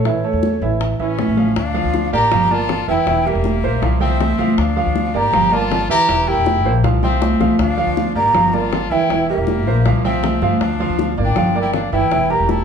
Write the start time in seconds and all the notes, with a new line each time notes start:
0.05 A1 E3 E4 C#5 E5, high bongo, high conga
0.24 A3 A4 C#5, high bongo, high conga
0.33 E2
0.43 high bongo, high conga
0.62 A1 E3 E4 E5, high bongo
0.81 high bongo
0.99 A1 E3 C#4 E4 E5, high bongo, high conga
1.19 high bongo, low bongo, high conga
1.27 A1
1.37 F3 F4 F5, high conga
1.56 D2 D4 F5, high bongo
1.74 F3 F4 F5, high conga
1.85 D2
1.94 high bongo, high conga
2.12 A1 A#3 G4 A#4 D5 A#5, high conga
2.32 G1 F3 F4 F5, high bongo, high conga, low conga
2.50 A#3 F4 A#4 D5 A5
2.69 high bongo, low bongo, high conga
2.88 F1 E3 E4 E5 G5, high conga
3.06 E1 E3 E4 E5, high bongo, high conga
3.25 G3 A#3 G4 A#4 E5, high bongo, high conga
3.35 E1
3.44 high bongo, high conga
3.63 B1 A#3 A#4 C5, high bongo
3.82 C2 F3 F4 F5, high bongo, high conga
4.00 F3 C4 F4 E5 G5, high bongo, high conga
4.20 high bongo, low bongo, high conga
4.38 C2 F3 F4 F5, high conga
4.57 D2 D4 F5, high bongo
4.76 F3 F4 F5, high conga
4.86 D2
4.95 high bongo, high conga
5.14 G#1 A#3 G4 A#4 D5 A#5, high conga
5.33 G1 F3 F4 F5, high bongo, high conga, low conga
5.52 A#3 F4 A#4 D5 A5, high conga
5.71 high bongo, low bongo, high conga
5.89 D2 E3 E4 G4 E5 A#5, high conga
6.08 E1 E3 E4 E5, high bongo, high conga
6.27 G3 E4 G4 A#4 G5, high bongo, high conga
6.37 E1
6.46 high bongo, high conga
6.65 A#1 A#3 A#4 C5, high bongo
6.84 C2 F3 F4 F5, high bongo, high conga
7.03 F3 C4 F4 E5 G5, high bongo, high conga
7.22 high bongo, high conga
7.40 C2 F3 F4 F5, low bongo, high conga
7.59 D2 D4 F5, high bongo, high conga
7.77 F3 F4 F5
7.87 D2
7.97 high bongo, high conga
8.15 G#1 A#3 G4 A#4 D5 A#5, high conga
8.33 G1 F3 F4 F5, high bongo, high conga, low conga
8.53 A#3 F4 A#4 D5 A5
8.72 high bongo, low bongo, high conga
8.90 D2 E3 E4 E5 G5, high conga
9.09 E1 E3 E4 E5, high bongo, high conga
9.28 G3 A#3 G4 A#4 E5, high bongo, high conga
9.37 E1
9.47 high bongo, high conga
9.66 A#1 A#3 A#4 C5, high bongo
9.85 C2 F3 F4 F5, high bongo, high conga
10.04 F3 C4 F4 E5 G5, high bongo, high conga
10.23 high bongo, low bongo, high conga
10.42 G2 F3 F4 F5, high conga
10.60 D2 D4 F5, high bongo, high conga
10.80 F3 F4 F5, high conga
10.89 D2
10.99 high bongo, high conga
11.17 A1 A#3 A#4 D5, high conga
11.24 D4 G5
11.36 G1 F3 F4 F5, high bongo, high conga, low conga
11.55 A#3 A#4 D5, high conga
11.61 E4 G5
11.74 D4 F5, high bongo, low bongo, high conga
11.92 G1 E3 E4 E5 G5, high conga
12.11 E1 E3 E4 E5, high bongo, high conga
12.30 G3 G4 A#4 A#5, high bongo, high conga
12.40 E1
12.49 E4 A5, high bongo, high conga